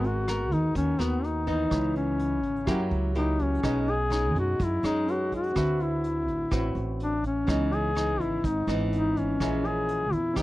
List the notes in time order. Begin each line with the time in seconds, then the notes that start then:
Already playing: G#1 G#3 B3 F#4 A#4 G#5
0.04 F#4, closed hi-hat
0.28 B3 F#4 A#4, cross-stick, closed hi-hat
0.51 D#2 D#4, kick, closed hi-hat
0.75 D#2 D#3 C#4, kick, closed hi-hat
0.99 D#2 B3 F#4 A#4, cross-stick, closed hi-hat
1.24 D#4, closed hi-hat
1.47 E3 B3 D#4, kick, closed hi-hat
1.69 C#2 C#3 B4 C#5 D#5, kick, cross-stick, closed hi-hat
1.75 E4
1.95 C#4, closed hi-hat
2.19 closed hi-hat
2.43 G#1, kick, closed hi-hat
2.64 F#2 F#3 A#3 E4 G4 A#4, kick, cross-stick, closed hi-hat
2.71 F#5
2.91 C#2, closed hi-hat
3.15 A#3 D#4 E4 G4, closed hi-hat
3.39 C#4, kick, closed hi-hat
3.60 B2 C#4 G#4, kick, cross-stick, closed hi-hat
3.64 B1 G#3 C#4 D#4 B4 D#5
3.88 G#4, closed hi-hat
4.10 G#3 C#4 D#4, cross-stick, closed hi-hat
4.36 F#2 F#4, kick, closed hi-hat
4.59 F#2 F#3, kick, closed hi-hat
4.64 E4
4.83 F#2 G#3 C#4 D#4, cross-stick, closed hi-hat
4.87 D#4
5.06 C#4 G#4 B4 C#5, closed hi-hat
5.11 F#4
5.32 F#4, kick, closed hi-hat
5.51 D3 C4 F#4
5.56 D2 C4 F#4 B4 E5, kick, cross-stick, closed hi-hat
5.80 E4, closed hi-hat
6.04 closed hi-hat
6.28 A1, kick, closed hi-hat
6.51 A1 A2 C4 F#4 B4, kick, cross-stick, closed hi-hat
6.75 A1, closed hi-hat
7.00 D4, closed hi-hat
7.24 C#4, kick, closed hi-hat
7.44 C#2 C#3 E3 B3 C#4 D#4 B4, kick, cross-stick, closed hi-hat
7.50 D#5
7.72 G#4, closed hi-hat
7.95 E3 B3 D#4, cross-stick, closed hi-hat
8.20 G#1 E4, kick, closed hi-hat
8.44 G#1 G#2 D#4, kick, closed hi-hat
8.66 G#1 E3 B3 C#4 D#4 B4 D#5, cross-stick, closed hi-hat
8.92 D#4, closed hi-hat
9.16 C#4, kick, closed hi-hat
9.37 A#1 A#2 E3 G#3 C#4 G#4 A#4, kick, cross-stick, closed hi-hat
9.42 C#4 E5
9.64 G#4, closed hi-hat
9.88 closed hi-hat
10.12 E2 E4, kick, closed hi-hat
10.33 D#2 D#3 B3 C#4 G4 B4, kick, cross-stick, closed hi-hat
10.37 D#4 D#5